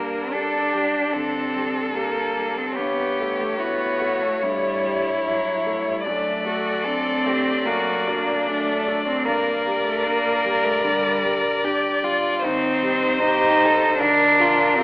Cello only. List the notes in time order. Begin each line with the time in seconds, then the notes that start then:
Already playing: A#3
0.32 D4
1.14 C4
1.95 A#3
2.58 C4
2.76 B3
3.39 A3
3.58 B3
4.22 A3
4.42 G3
5.25 F#3
5.86 G3
6.06 A3
6.85 C4
7.66 A#3
8.48 A3
9.07 C4
9.25 A#3
9.85 A3
10.04 A#3
10.64 A3
10.82 G3
12.42 C4
13.20 D#4
13.98 D4
14.75 C4